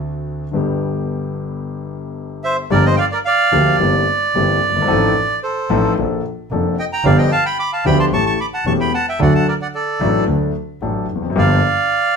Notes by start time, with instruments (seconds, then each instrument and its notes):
Already playing: double bass D2, grand piano D2 D3 A3 C4 F#4
0.51 grand piano G1 G2 D3 G3 B3
0.55 grand piano G4
2.44 bandoneon C5 E5
2.70 grand piano G1 G2 F3 A#3 D4 G4, double bass G1, bandoneon A#4 D5
2.85 bandoneon C5 D#5
2.96 bandoneon D5 F5 G5
3.11 bandoneon A#4 D5
3.25 bandoneon D5 F5
3.52 grand piano D2 D3 F3 A#3 D4 G4, double bass D2
3.80 grand piano G1 G2 E3 A#3 C4 G4, double bass G1
4.35 double bass G1, grand piano G1 G2 E3 A#3 C4 G4
4.62 double bass G1
4.69 grand piano F#1
4.76 grand piano G1
4.82 grand piano G#1
4.88 grand piano A1 A2 F3 C4 D#4 A4, double bass A1
5.43 bandoneon A4 C5
5.70 grand piano A1 A2 F3 C4 D#4 A4, double bass A1
5.97 double bass A#1, grand piano A#1 A#2 F3 A#3 D4 A4
6.51 double bass F1, grand piano F1 F2 F3 A#3 D4 A4
6.79 bandoneon D#5 G5
6.93 bandoneon G5 A#5
7.04 double bass G1, grand piano G1 G2 F3 B3 D4 G4, bandoneon D5 F5
7.18 bandoneon D#5 G5
7.32 bandoneon F5 A5
7.46 bandoneon G5 B5
7.59 bandoneon B5 D6
7.73 bandoneon F5 A5
7.85 double bass D2, grand piano D2 D3 F3 B3 D4 G4, bandoneon G5 B5
7.99 bandoneon A5 C6
8.11 double bass A1, grand piano A1 A2 E3 A3 C#4 G4, bandoneon A5 C#6
8.26 bandoneon A5 C#6
8.40 bandoneon B5 D6
8.54 bandoneon F#5 A5
8.65 double bass E1, grand piano E1 E2 E3 A3 C#4 G4, bandoneon A5 C#6
8.80 bandoneon G5 B5
8.94 bandoneon F#5 A5
9.09 bandoneon E5 G5
9.19 grand piano D2 D3 F#3 A3 D4 A4, double bass D2, bandoneon D5 F#5
9.35 bandoneon F#5 A5
9.48 bandoneon A#4 D5
9.62 bandoneon D5 F#5
9.74 bandoneon A4 D5
10.00 double bass A1, grand piano A1 A2 F#3 A3 D4 A4
10.27 grand piano D2 D3 F#3 A3 D4 A4, double bass D2
10.82 double bass A1, grand piano A1 A2 F#3 A3 D4 A4
11.09 double bass F1
11.15 grand piano E2
11.22 grand piano F2
11.30 grand piano F#2
11.35 grand piano G1 G2 F3 A#3 D4 G4, double bass G1, bandoneon D5 F5